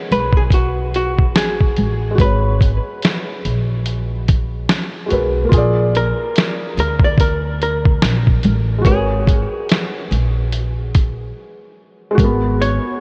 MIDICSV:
0, 0, Header, 1, 5, 480
1, 0, Start_track
1, 0, Key_signature, 5, "minor"
1, 0, Tempo, 833333
1, 1256, Time_signature, 4, 2, 24, 8
1, 7490, End_track
2, 0, Start_track
2, 0, Title_t, "Hollow-body jazz guitar"
2, 0, Program_c, 0, 26
2, 0, Note_on_c, 0, 73, 93
2, 68, Note_off_c, 0, 73, 0
2, 71, Note_on_c, 0, 71, 85
2, 212, Note_off_c, 0, 71, 0
2, 212, Note_on_c, 0, 68, 81
2, 241, Note_off_c, 0, 68, 0
2, 310, Note_on_c, 0, 66, 76
2, 544, Note_off_c, 0, 66, 0
2, 551, Note_on_c, 0, 66, 86
2, 767, Note_off_c, 0, 66, 0
2, 789, Note_on_c, 0, 68, 83
2, 1275, Note_on_c, 0, 71, 84
2, 1277, Note_off_c, 0, 68, 0
2, 2202, Note_off_c, 0, 71, 0
2, 3437, Note_on_c, 0, 70, 83
2, 3909, Note_off_c, 0, 70, 0
2, 3916, Note_on_c, 0, 70, 81
2, 4054, Note_off_c, 0, 70, 0
2, 4057, Note_on_c, 0, 74, 89
2, 4147, Note_off_c, 0, 74, 0
2, 4150, Note_on_c, 0, 70, 80
2, 4366, Note_off_c, 0, 70, 0
2, 4393, Note_on_c, 0, 70, 74
2, 4841, Note_off_c, 0, 70, 0
2, 5106, Note_on_c, 0, 68, 99
2, 5723, Note_off_c, 0, 68, 0
2, 5723, Note_on_c, 0, 66, 99
2, 6038, Note_off_c, 0, 66, 0
2, 7268, Note_on_c, 0, 73, 100
2, 7490, Note_off_c, 0, 73, 0
2, 7490, End_track
3, 0, Start_track
3, 0, Title_t, "Felt piano"
3, 0, Program_c, 1, 0
3, 0, Control_c, 1, 64, 127
3, 0, Note_on_c, 1, 56, 75
3, 0, Note_on_c, 1, 66, 66
3, 0, Note_on_c, 1, 70, 73
3, 0, Note_on_c, 1, 71, 88
3, 0, Note_on_c, 1, 75, 64
3, 1207, Note_off_c, 1, 56, 0
3, 1216, Note_on_c, 1, 56, 62
3, 1222, Note_off_c, 1, 66, 0
3, 1236, Note_off_c, 1, 70, 0
3, 1241, Note_on_c, 1, 66, 61
3, 1248, Note_off_c, 1, 71, 0
3, 1266, Note_on_c, 1, 71, 58
3, 1291, Note_on_c, 1, 73, 74
3, 2893, Note_off_c, 1, 56, 0
3, 2905, Note_off_c, 1, 66, 0
3, 2915, Note_on_c, 1, 56, 50
3, 2918, Note_off_c, 1, 71, 0
3, 2928, Note_on_c, 1, 66, 47
3, 2930, Note_off_c, 1, 73, 0
3, 2941, Note_on_c, 1, 70, 45
3, 2953, Note_on_c, 1, 71, 64
3, 3137, Note_on_c, 1, 58, 67
3, 3162, Note_on_c, 1, 65, 69
3, 3166, Note_off_c, 1, 56, 0
3, 3172, Note_off_c, 1, 66, 0
3, 3178, Note_off_c, 1, 70, 0
3, 3183, Control_c, 1, 64, 0
3, 3184, Note_off_c, 1, 71, 0
3, 3187, Note_off_c, 1, 75, 0
3, 3189, Note_on_c, 1, 68, 76
3, 3212, Note_on_c, 1, 74, 78
3, 3282, Control_c, 1, 64, 127
3, 5053, Note_off_c, 1, 58, 0
3, 5059, Note_on_c, 1, 56, 56
3, 5066, Note_off_c, 1, 65, 0
3, 5077, Note_on_c, 1, 66, 61
3, 5079, Note_off_c, 1, 68, 0
3, 5091, Note_off_c, 1, 74, 0
3, 5095, Note_on_c, 1, 70, 64
3, 5103, Control_c, 1, 64, 0
3, 5114, Note_on_c, 1, 71, 58
3, 5133, Note_on_c, 1, 73, 73
3, 5213, Control_c, 1, 64, 127
3, 6968, Note_off_c, 1, 56, 0
3, 6976, Note_on_c, 1, 56, 78
3, 6983, Note_off_c, 1, 66, 0
3, 6992, Note_off_c, 1, 70, 0
3, 7000, Note_on_c, 1, 66, 66
3, 7002, Note_off_c, 1, 71, 0
3, 7011, Note_off_c, 1, 73, 0
3, 7023, Control_c, 1, 64, 0
3, 7026, Note_on_c, 1, 70, 68
3, 7052, Note_on_c, 1, 59, 88
3, 7133, Control_c, 1, 64, 127
3, 7490, Note_off_c, 1, 56, 0
3, 7490, Note_off_c, 1, 59, 0
3, 7490, Note_off_c, 1, 66, 0
3, 7490, Note_off_c, 1, 70, 0
3, 7490, End_track
4, 0, Start_track
4, 0, Title_t, "Upright bass"
4, 0, Program_c, 2, 32
4, 65, Note_on_c, 2, 35, 86
4, 785, Note_off_c, 2, 35, 0
4, 785, Note_on_c, 2, 32, 88
4, 992, Note_off_c, 2, 32, 0
4, 1025, Note_on_c, 2, 33, 85
4, 1232, Note_off_c, 2, 33, 0
4, 1261, Note_on_c, 2, 32, 101
4, 1597, Note_off_c, 2, 32, 0
4, 1988, Note_on_c, 2, 34, 81
4, 2679, Note_off_c, 2, 34, 0
4, 2944, Note_on_c, 2, 35, 89
4, 3152, Note_off_c, 2, 35, 0
4, 3183, Note_on_c, 2, 34, 102
4, 3518, Note_off_c, 2, 34, 0
4, 3902, Note_on_c, 2, 38, 95
4, 4596, Note_off_c, 2, 38, 0
4, 4623, Note_on_c, 2, 34, 87
4, 4831, Note_off_c, 2, 34, 0
4, 4864, Note_on_c, 2, 33, 101
4, 5072, Note_off_c, 2, 33, 0
4, 5098, Note_on_c, 2, 32, 96
4, 5435, Note_off_c, 2, 32, 0
4, 5823, Note_on_c, 2, 34, 85
4, 6516, Note_off_c, 2, 34, 0
4, 7021, Note_on_c, 2, 32, 103
4, 7357, Note_off_c, 2, 32, 0
4, 7490, End_track
5, 0, Start_track
5, 0, Title_t, "Drums"
5, 68, Note_on_c, 9, 42, 67
5, 125, Note_off_c, 9, 42, 0
5, 187, Note_on_c, 9, 36, 79
5, 245, Note_off_c, 9, 36, 0
5, 290, Note_on_c, 9, 36, 78
5, 298, Note_on_c, 9, 42, 79
5, 348, Note_off_c, 9, 36, 0
5, 356, Note_off_c, 9, 42, 0
5, 543, Note_on_c, 9, 42, 65
5, 600, Note_off_c, 9, 42, 0
5, 682, Note_on_c, 9, 36, 73
5, 740, Note_off_c, 9, 36, 0
5, 781, Note_on_c, 9, 38, 116
5, 794, Note_on_c, 9, 42, 91
5, 839, Note_off_c, 9, 38, 0
5, 852, Note_off_c, 9, 42, 0
5, 925, Note_on_c, 9, 36, 74
5, 983, Note_off_c, 9, 36, 0
5, 1017, Note_on_c, 9, 42, 62
5, 1075, Note_off_c, 9, 42, 0
5, 1258, Note_on_c, 9, 36, 118
5, 1267, Note_on_c, 9, 42, 84
5, 1316, Note_off_c, 9, 36, 0
5, 1324, Note_off_c, 9, 42, 0
5, 1502, Note_on_c, 9, 36, 82
5, 1509, Note_on_c, 9, 42, 69
5, 1560, Note_off_c, 9, 36, 0
5, 1566, Note_off_c, 9, 42, 0
5, 1742, Note_on_c, 9, 42, 75
5, 1756, Note_on_c, 9, 38, 100
5, 1800, Note_off_c, 9, 42, 0
5, 1813, Note_off_c, 9, 38, 0
5, 1988, Note_on_c, 9, 42, 63
5, 2046, Note_off_c, 9, 42, 0
5, 2222, Note_on_c, 9, 42, 80
5, 2280, Note_off_c, 9, 42, 0
5, 2467, Note_on_c, 9, 42, 69
5, 2469, Note_on_c, 9, 36, 86
5, 2525, Note_off_c, 9, 42, 0
5, 2527, Note_off_c, 9, 36, 0
5, 2702, Note_on_c, 9, 38, 114
5, 2715, Note_on_c, 9, 42, 79
5, 2760, Note_off_c, 9, 38, 0
5, 2773, Note_off_c, 9, 42, 0
5, 2940, Note_on_c, 9, 42, 58
5, 2997, Note_off_c, 9, 42, 0
5, 3178, Note_on_c, 9, 36, 98
5, 3185, Note_on_c, 9, 42, 76
5, 3236, Note_off_c, 9, 36, 0
5, 3243, Note_off_c, 9, 42, 0
5, 3427, Note_on_c, 9, 42, 67
5, 3485, Note_off_c, 9, 42, 0
5, 3662, Note_on_c, 9, 42, 73
5, 3675, Note_on_c, 9, 38, 97
5, 3719, Note_off_c, 9, 42, 0
5, 3733, Note_off_c, 9, 38, 0
5, 3910, Note_on_c, 9, 42, 66
5, 3967, Note_off_c, 9, 42, 0
5, 4029, Note_on_c, 9, 36, 84
5, 4087, Note_off_c, 9, 36, 0
5, 4133, Note_on_c, 9, 36, 91
5, 4145, Note_on_c, 9, 42, 88
5, 4191, Note_off_c, 9, 36, 0
5, 4203, Note_off_c, 9, 42, 0
5, 4387, Note_on_c, 9, 42, 73
5, 4444, Note_off_c, 9, 42, 0
5, 4524, Note_on_c, 9, 36, 76
5, 4582, Note_off_c, 9, 36, 0
5, 4621, Note_on_c, 9, 38, 105
5, 4634, Note_on_c, 9, 42, 85
5, 4678, Note_off_c, 9, 38, 0
5, 4691, Note_off_c, 9, 42, 0
5, 4764, Note_on_c, 9, 36, 73
5, 4822, Note_off_c, 9, 36, 0
5, 4856, Note_on_c, 9, 42, 64
5, 4914, Note_off_c, 9, 42, 0
5, 5096, Note_on_c, 9, 36, 107
5, 5101, Note_on_c, 9, 42, 74
5, 5153, Note_off_c, 9, 36, 0
5, 5159, Note_off_c, 9, 42, 0
5, 5341, Note_on_c, 9, 36, 87
5, 5348, Note_on_c, 9, 42, 72
5, 5399, Note_off_c, 9, 36, 0
5, 5406, Note_off_c, 9, 42, 0
5, 5583, Note_on_c, 9, 42, 72
5, 5596, Note_on_c, 9, 38, 99
5, 5640, Note_off_c, 9, 42, 0
5, 5654, Note_off_c, 9, 38, 0
5, 5831, Note_on_c, 9, 42, 63
5, 5888, Note_off_c, 9, 42, 0
5, 6062, Note_on_c, 9, 42, 83
5, 6120, Note_off_c, 9, 42, 0
5, 6305, Note_on_c, 9, 42, 67
5, 6308, Note_on_c, 9, 36, 83
5, 6363, Note_off_c, 9, 42, 0
5, 6365, Note_off_c, 9, 36, 0
5, 7017, Note_on_c, 9, 36, 111
5, 7026, Note_on_c, 9, 42, 81
5, 7074, Note_off_c, 9, 36, 0
5, 7083, Note_off_c, 9, 42, 0
5, 7269, Note_on_c, 9, 42, 71
5, 7327, Note_off_c, 9, 42, 0
5, 7490, End_track
0, 0, End_of_file